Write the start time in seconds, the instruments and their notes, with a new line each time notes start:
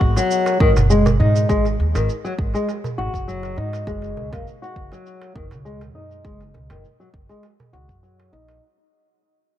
Already playing: nylon-string guitar F#4
0.01 upright bass G#1, kick
0.17 nylon-string guitar F#3, darbuka ka, cabasa
0.31 cabasa
0.46 darbuka tek, cabasa
0.60 upright bass G#1, nylon-string guitar D#3, kick
0.76 upright bass F#1, darbuka tek, darbuka dum, cabasa
0.90 nylon-string guitar G#3, cabasa
1.06 darbuka ka, darbuka tek, darbuka dum, cabasa
1.20 upright bass G#2, nylon-string guitar D#4
1.36 cabasa
1.49 upright bass G#1, nylon-string guitar G#3, kick, cabasa
1.65 darbuka ka, cabasa
1.80 upright bass D#2
1.95 upright bass G#1, nylon-string guitar D#3, darbuka ka, darbuka tek, cabasa
2.09 cabasa
2.25 nylon-string guitar F#3, cabasa
2.39 upright bass G#1, kick
2.54 nylon-string guitar G#3, darbuka ka, cabasa
2.69 darbuka tek, cabasa
2.84 darbuka dum, cabasa
2.98 upright bass G#1, nylon-string guitar F#4, darbuka ka
3.14 upright bass F#1, kick, cabasa
3.28 nylon-string guitar F#3, cabasa
3.43 darbuka tek, cabasa
3.57 upright bass G#2, nylon-string guitar D#4, darbuka ka
3.73 darbuka tek, cabasa
3.87 upright bass F#1, nylon-string guitar G#3, kick, cabasa
4.02 darbuka ka, cabasa
4.17 upright bass C#2, darbuka dum
4.33 upright bass F#1, nylon-string guitar A#3, kick, darbuka ka, darbuka tek, cabasa
4.47 cabasa
4.62 nylon-string guitar F#4, cabasa
4.76 upright bass F#1, kick
4.92 nylon-string guitar F#3, darbuka ka, cabasa
5.06 cabasa
5.22 darbuka tek, cabasa
5.36 upright bass F#1, nylon-string guitar D#3, kick
5.51 upright bass C#2, darbuka tek, darbuka dum, cabasa
5.65 nylon-string guitar G#3, cabasa
5.81 darbuka ka, darbuka tek, darbuka dum, cabasa
5.95 upright bass F#2, nylon-string guitar D#4
6.11 cabasa
6.25 upright bass F#1, nylon-string guitar G#3, kick, cabasa
6.41 darbuka ka, cabasa
6.54 upright bass C#2, darbuka dum
6.70 upright bass F#1, nylon-string guitar D#3, darbuka ka, darbuka tek, cabasa
6.85 cabasa
7.00 nylon-string guitar F#3, cabasa
7.14 upright bass F#1, kick
7.29 nylon-string guitar G#3, darbuka ka, cabasa
7.43 darbuka tek, cabasa
7.60 darbuka dum, cabasa
7.73 upright bass C#2, nylon-string guitar F#4, darbuka ka
7.89 upright bass F#2, kick, cabasa
8.03 nylon-string guitar F#3, cabasa
8.19 darbuka tek, cabasa
8.33 upright bass A#1, nylon-string guitar D#4, darbuka ka
8.49 darbuka tek, cabasa